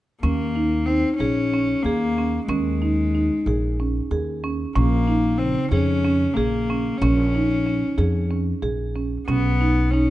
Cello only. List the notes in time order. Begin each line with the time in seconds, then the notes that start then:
0.21 A#3
0.86 C4
1.16 C#4
1.82 A#3
2.48 G#3
4.76 A#3
5.38 C4
5.71 C#4
6.34 A#3
6.97 C#4
9.28 B3
9.91 C#4